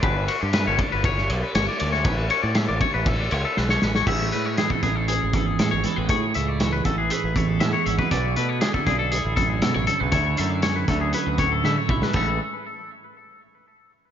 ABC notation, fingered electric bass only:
X:1
M:4/4
L:1/16
Q:1/4=119
K:A
V:1 name="Fingered electric bass" clef=bass
=G,,,2 z =G,,2 G,,, z G,,,3 B,,, z G,,, z D,,2 | A,,,2 z A,,2 A,,, z A,,,3 C,, z B,,,2 A,,,2 | A,,,2 A,,2 z2 A,,,3 G,,,3 A,, G,,, z A,,, | A,,2 C,,4 A,,,2 z A,,,3 A,, z G,,, z |
B,,,2 B,,2 z2 B,,,3 A,,,3 B,, A,,, z B,,, | D,,2 F,,4 D,,2 z D,,3 D, z B,,, z | A,,,2 z12 z2 |]